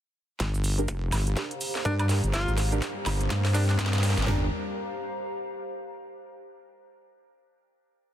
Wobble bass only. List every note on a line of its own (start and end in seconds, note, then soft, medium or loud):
0.40 0.87 G1 loud
0.88 1.11 F1 medium
1.13 1.35 G1 loud
1.85 2.21 G2 medium
2.24 2.46 G1 medium
2.48 2.80 G#1 loud
3.06 3.29 G1 loud
3.30 3.77 G2 loud
3.79 4.15 G2 loud
4.17 4.26 G1 loud
4.27 4.50 G1 loud